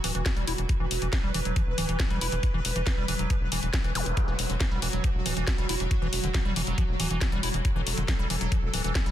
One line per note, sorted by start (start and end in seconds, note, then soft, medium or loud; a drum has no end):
0.00 0.13 E3 loud
0.00 9.11 F#3 medium
0.00 0.71 F#4 medium
0.00 open hi-hat loud
0.04 0.11 D1 loud
0.15 0.22 E1 medium
0.15 0.24 E3 loud
0.15 closed hi-hat medium
0.26 kick loud
0.26 snare loud
0.26 closed hi-hat medium
0.37 0.44 E1 medium
0.37 0.45 G3 loud
0.37 closed hi-hat soft
0.47 0.55 E1 loud
0.47 0.53 E4 loud
0.47 open hi-hat loud
0.58 0.65 E1 medium
0.58 0.62 E3 medium
0.58 closed hi-hat medium
0.69 4.19 B4 medium
0.69 kick loud
0.69 closed hi-hat medium
0.80 0.87 E1 medium
0.80 0.86 E3 loud
0.91 0.98 E1 loud
0.91 open hi-hat loud
1.02 1.09 E1 medium
1.02 1.08 E3 medium
1.02 closed hi-hat medium
1.13 1.19 E3 medium
1.13 kick loud
1.13 snare loud
1.13 closed hi-hat medium
1.24 1.31 E1 medium
1.24 1.32 G3 loud
1.34 1.42 E1 loud
1.34 1.40 E3 loud
1.34 open hi-hat medium
1.45 1.52 E1 medium
1.45 1.58 F#3 medium
1.45 closed hi-hat medium
1.56 1.62 E3 medium
1.56 kick loud
1.56 closed hi-hat medium
1.67 1.74 E1 medium
1.78 1.85 D1 loud
1.78 1.87 E3 loud
1.78 open hi-hat loud
1.89 1.96 E1 medium
1.89 1.98 E3 loud
1.89 closed hi-hat medium
2.00 kick loud
2.00 snare loud
2.00 closed hi-hat medium
2.11 2.18 E1 medium
2.11 2.19 G3 loud
2.11 closed hi-hat soft
2.21 2.28 E1 loud
2.21 2.27 E4 loud
2.21 open hi-hat loud
2.32 2.39 E1 medium
2.32 2.36 E3 medium
2.32 closed hi-hat medium
2.43 kick loud
2.43 closed hi-hat medium
2.54 2.61 E1 medium
2.54 2.60 E3 loud
2.65 2.72 E1 loud
2.65 open hi-hat loud
2.76 2.83 E1 loud
2.76 2.82 E3 medium
2.76 closed hi-hat medium
2.87 2.92 E3 medium
2.87 kick loud
2.87 snare loud
2.87 closed hi-hat medium
2.97 3.05 E1 medium
2.97 3.06 G3 loud
3.08 3.15 E1 loud
3.08 3.14 E3 loud
3.08 open hi-hat medium
3.19 3.26 E1 medium
3.19 3.32 F#3 medium
3.19 closed hi-hat soft
3.30 3.36 E3 medium
3.30 kick loud
3.30 closed hi-hat medium
3.41 3.48 E1 medium
3.52 3.59 E1 loud
3.52 3.61 E3 loud
3.52 open hi-hat loud
3.63 3.70 E1 medium
3.63 3.69 E3 medium
3.63 closed hi-hat medium
3.74 3.79 E3 loud
3.74 kick loud
3.74 snare loud
3.74 closed hi-hat medium
3.84 3.92 E1 medium
3.84 3.93 E3 loud
3.84 closed hi-hat soft
3.95 4.02 E1 loud
3.95 4.08 E3 loud
3.95 open hi-hat loud
3.95 zap medium
4.06 4.13 E1 medium
4.06 4.12 D3 medium
4.06 closed hi-hat medium
4.17 7.67 F#4 medium
4.17 kick loud
4.17 closed hi-hat medium
4.28 4.35 E1 medium
4.28 4.34 E3 loud
4.39 4.46 E1 loud
4.39 open hi-hat loud
4.50 4.57 E1 medium
4.50 4.55 D3 medium
4.50 closed hi-hat medium
4.61 4.66 E3 medium
4.61 kick loud
4.61 snare loud
4.61 closed hi-hat medium
4.71 4.78 E1 medium
4.71 4.80 G3 loud
4.82 4.89 E1 loud
4.82 4.88 E3 loud
4.82 open hi-hat medium
4.93 5.00 E1 medium
4.93 5.06 F#3 medium
4.93 closed hi-hat soft
5.04 5.10 E3 medium
5.04 kick loud
5.04 closed hi-hat medium
5.15 5.22 E1 medium
5.26 5.33 D1 loud
5.26 5.35 E3 loud
5.26 open hi-hat loud
5.37 5.44 E1 medium
5.37 5.45 E3 loud
5.37 closed hi-hat medium
5.47 kick loud
5.47 snare loud
5.47 closed hi-hat medium
5.58 5.65 E1 medium
5.58 5.67 G3 loud
5.58 closed hi-hat soft
5.69 5.76 E1 loud
5.69 5.75 E4 loud
5.69 open hi-hat loud
5.80 5.87 E1 medium
5.80 5.84 E3 medium
5.80 closed hi-hat medium
5.91 kick loud
5.91 closed hi-hat medium
6.02 6.09 E1 medium
6.02 6.08 E3 loud
6.13 6.20 E1 loud
6.13 open hi-hat loud
6.24 6.31 E1 medium
6.24 6.29 D3 medium
6.24 closed hi-hat medium
6.34 6.40 E3 medium
6.34 kick loud
6.34 snare loud
6.34 closed hi-hat medium
6.45 6.52 E1 medium
6.45 6.54 G3 loud
6.56 6.63 E1 loud
6.56 6.62 E3 loud
6.56 open hi-hat medium
6.67 6.74 E1 medium
6.67 6.79 F#3 medium
6.67 closed hi-hat medium
6.78 6.84 E3 medium
6.78 kick loud
6.78 closed hi-hat medium
6.89 6.96 E1 medium
7.00 7.07 D1 loud
7.00 7.08 E3 loud
7.00 open hi-hat loud
7.11 7.18 E1 medium
7.11 7.19 E3 loud
7.11 closed hi-hat medium
7.21 kick loud
7.21 snare loud
7.21 closed hi-hat medium
7.32 7.39 E1 medium
7.32 7.41 G3 loud
7.32 closed hi-hat soft
7.43 7.50 E1 loud
7.43 7.49 E4 loud
7.43 open hi-hat medium
7.54 7.61 E1 medium
7.54 7.58 E3 medium
7.54 closed hi-hat medium
7.65 9.11 A4 medium
7.65 kick loud
7.65 closed hi-hat medium
7.76 7.83 E1 medium
7.76 7.82 E3 loud
7.87 7.94 E1 loud
7.87 open hi-hat loud
7.97 8.05 E1 medium
7.97 8.03 D3 medium
7.97 closed hi-hat medium
8.08 8.14 E3 medium
8.08 kick loud
8.08 snare loud
8.08 closed hi-hat medium
8.19 8.26 E1 medium
8.19 8.28 G3 loud
8.30 8.37 E1 loud
8.30 8.36 E3 loud
8.30 open hi-hat medium
8.41 8.48 E1 medium
8.41 8.53 F#3 medium
8.41 closed hi-hat medium
8.52 8.58 E3 medium
8.52 kick loud
8.52 closed hi-hat medium
8.63 8.70 E1 medium
8.74 8.81 D1 loud
8.74 8.82 E3 loud
8.74 open hi-hat loud
8.84 8.92 E1 medium
8.84 8.93 E3 loud
8.84 closed hi-hat medium
8.95 kick loud
8.95 snare loud
8.95 closed hi-hat medium
9.06 9.11 E1 medium
9.06 9.11 G3 loud
9.06 closed hi-hat soft